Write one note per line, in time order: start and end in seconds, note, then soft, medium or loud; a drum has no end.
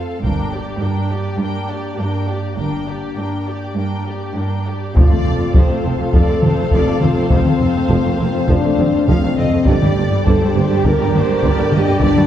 0.00 0.14 F2 soft
0.00 0.19 A3 soft
0.00 0.20 C4 soft
0.00 0.24 A4 soft
0.00 0.24 F5 soft
0.22 0.72 G1 medium
0.22 0.72 G2 medium
0.22 4.62 A#3 soft
0.22 4.62 D4 medium
0.22 0.51 D4 soft
0.22 0.51 A#4 soft
0.22 0.50 G5 soft
0.22 taiko soft
0.52 0.81 G4 soft
0.52 0.82 G4 soft
0.52 0.81 D5 soft
0.80 1.29 G2 medium
0.80 1.11 D4 soft
0.80 1.11 A#4 soft
0.80 1.11 G5 soft
1.10 1.40 G4 soft
1.10 1.40 D5 soft
1.38 1.88 G2 medium
1.38 1.67 D4 soft
1.38 1.67 A#4 soft
1.38 1.68 G5 soft
1.69 1.99 G4 soft
1.69 1.99 D5 soft
1.98 2.48 G2 soft
1.98 2.28 D4 soft
1.98 2.28 A#4 soft
1.98 2.29 G5 soft
2.27 2.57 G4 soft
2.27 2.58 G4 soft
2.27 2.58 D5 soft
2.57 3.08 G1 soft
2.57 3.07 G2 soft
2.57 2.85 D4 soft
2.57 2.86 A#4 soft
2.57 2.85 G5 soft
2.87 3.17 G4 soft
2.87 3.18 G4 soft
2.87 3.18 D5 soft
3.17 3.68 G2 soft
3.17 3.47 D4 soft
3.17 3.48 A#4 soft
3.17 3.47 G5 soft
3.47 3.77 G4 soft
3.47 3.78 G4 soft
3.47 3.78 D5 soft
3.76 4.27 G2 soft
3.76 4.05 D4 soft
3.76 4.05 A#4 soft
3.76 4.05 G5 soft
4.06 4.37 G4 soft
4.06 4.37 D5 soft
4.36 4.86 G2 soft
4.36 4.67 D4 soft
4.36 4.67 A#4 soft
4.36 4.67 G5 soft
4.66 4.96 G4 soft
4.66 4.97 G4 soft
4.66 4.96 D5 soft
4.95 5.02 F1 medium
4.95 5.01 F2 medium
4.95 5.02 F3 medium
4.95 9.63 F3 medium
4.95 9.63 C4 medium
4.95 5.51 F4 medium
4.95 9.62 A4 medium
4.95 5.52 D5 medium
4.95 9.63 F5 medium
4.95 taiko medium
5.09 5.16 F2 medium
5.09 5.16 A3 soft
5.09 taiko mid soft
5.24 5.31 F1 medium
5.24 5.32 F1 medium
5.24 5.30 F2 medium
5.24 5.31 C4 soft
5.38 5.44 F2 medium
5.38 5.46 A3 medium
5.53 5.60 F1 medium
5.53 5.61 F1 medium
5.53 5.59 F2 medium
5.53 5.61 F3 medium
5.53 5.74 G4 medium
5.53 taiko medium
5.57 6.15 C5 medium
5.68 5.75 F2 medium
5.68 5.76 A3 soft
5.76 5.94 F4 medium
5.83 5.89 F1 medium
5.83 5.91 F1 medium
5.83 5.89 F2 medium
5.83 5.90 C4 medium
5.95 6.04 F2 soft
5.95 6.05 A3 medium
5.95 6.14 F4 medium
6.12 6.18 F1 medium
6.12 6.20 F1 medium
6.12 6.19 F2 medium
6.12 6.20 F3 medium
6.12 7.03 A4 medium
6.12 6.43 D5 medium
6.12 taiko medium
6.28 6.34 F2 medium
6.28 6.35 A3 medium
6.42 6.48 F1 medium
6.42 6.50 F1 medium
6.42 6.49 F2 medium
6.42 6.50 C4 medium
6.42 6.73 C5 medium
6.42 taiko mid medium
6.58 6.64 F2 medium
6.58 6.65 A3 medium
6.71 6.78 F1 medium
6.71 6.80 F1 medium
6.71 6.79 F2 medium
6.71 6.79 F3 medium
6.71 7.02 D5 medium
6.71 taiko medium
6.87 6.93 F2 medium
6.87 6.93 A3 medium
7.01 7.07 F1 medium
7.01 7.09 F1 medium
7.01 7.08 F2 medium
7.01 7.08 C4 medium
7.01 7.31 F4 medium
7.01 9.04 C5 medium
7.01 taiko mid medium
7.16 7.23 F2 medium
7.16 7.22 A3 medium
7.30 7.37 F1 medium
7.30 7.38 F1 medium
7.30 7.37 F2 medium
7.30 7.36 F3 medium
7.30 7.88 C4 medium
7.30 taiko medium
7.45 7.52 F2 medium
7.45 7.51 A3 soft
7.45 taiko mid medium
7.60 7.66 F1 medium
7.60 7.67 F1 medium
7.60 7.67 F2 medium
7.60 7.67 C4 medium
7.75 7.81 F2 medium
7.75 7.81 A3 medium
7.89 7.95 F1 medium
7.89 7.96 F1 medium
7.89 7.95 F2 medium
7.89 7.95 F3 medium
7.89 8.09 C4 medium
7.89 taiko medium
8.04 8.11 F2 medium
8.04 8.10 A3 medium
8.10 8.30 A#3 medium
8.18 8.26 F1 medium
8.18 8.27 F1 medium
8.18 8.25 F2 medium
8.18 8.24 C4 medium
8.30 8.39 F2 medium
8.30 8.40 A3 medium
8.30 8.49 C4 medium
8.48 8.55 F1 medium
8.48 8.56 F1 medium
8.48 8.54 F2 medium
8.48 8.55 F3 medium
8.48 9.07 D4 medium
8.48 taiko medium
8.64 8.69 F2 medium
8.64 8.69 A3 medium
8.78 8.84 F1 medium
8.78 8.85 F1 medium
8.78 8.85 F2 medium
8.78 8.84 C4 medium
8.78 taiko mid medium
8.93 8.99 F2 medium
8.93 8.99 A3 medium
9.07 9.13 F1 medium
9.07 9.14 F1 medium
9.07 9.14 F2 medium
9.07 9.14 F3 medium
9.07 9.66 C4 medium
9.07 9.37 F5 medium
9.07 taiko medium
9.23 9.29 F2 medium
9.23 9.29 A3 medium
9.37 9.44 F1 medium
9.37 9.45 F1 medium
9.37 9.44 F2 medium
9.37 9.43 C4 medium
9.37 9.67 D#5 medium
9.37 taiko mid medium
9.52 9.59 F2 medium
9.52 9.58 A3 medium
9.66 9.73 G1 medium
9.66 9.74 G1 medium
9.66 9.74 G2 medium
9.66 9.73 D3 medium
9.66 12.27 D3 medium
9.66 12.27 D4 medium
9.66 10.25 G4 loud
9.66 12.27 G4 medium
9.66 10.26 D5 medium
9.66 12.27 D5 medium
9.66 taiko medium
9.82 9.88 G2 medium
9.82 9.88 G3 medium
9.82 taiko mid medium
9.97 10.03 G1 medium
9.97 10.04 G1 medium
9.97 10.03 G2 medium
9.97 10.04 A#3 medium
10.12 10.18 G2 medium
10.12 10.18 G3 medium
10.26 10.32 G1 medium
10.26 10.33 G2 medium
10.26 10.34 D3 medium
10.26 10.45 A4 loud
10.26 10.85 C5 medium
10.26 taiko medium
10.42 10.47 G2 medium
10.42 10.48 G3 medium
10.48 10.66 G4 medium
10.56 10.62 G1 medium
10.56 10.62 G2 medium
10.56 10.62 A#3 medium
10.67 10.85 G4 loud
10.71 10.77 G2 medium
10.71 10.77 G3 medium
10.84 10.90 G1 medium
10.84 10.91 G1 medium
10.84 10.92 G2 medium
10.84 10.91 D3 medium
10.84 11.14 A#4 medium
10.84 11.73 A#4 loud
10.84 taiko medium
11.01 11.06 G2 medium
11.01 11.06 G3 medium
11.13 11.20 G1 medium
11.13 11.21 G1 medium
11.13 11.20 G2 medium
11.13 11.20 A#3 medium
11.13 11.43 C5 medium
11.13 taiko mid medium
11.28 11.35 G2 medium
11.28 11.34 G3 medium
11.42 11.49 G1 medium
11.42 11.50 G1 medium
11.42 11.49 G2 medium
11.42 11.49 D3 medium
11.42 11.74 D5 medium
11.42 taiko medium
11.58 11.64 G2 medium
11.58 11.64 G3 medium
11.72 11.78 G1 medium
11.72 11.79 G1 medium
11.72 11.79 G2 medium
11.72 11.79 A#3 medium
11.72 12.02 G4 loud
11.72 12.02 D#5 medium
11.72 taiko mid medium
11.87 11.94 G2 medium
11.87 11.93 G3 medium
12.00 12.06 G1 medium
12.00 12.07 G1 medium
12.00 12.08 G2 medium
12.00 12.07 D3 medium
12.00 12.27 D4 loud
12.00 12.27 D5 medium
12.00 taiko loud
12.15 12.23 G2 medium
12.15 12.22 G3 medium
12.15 taiko mid medium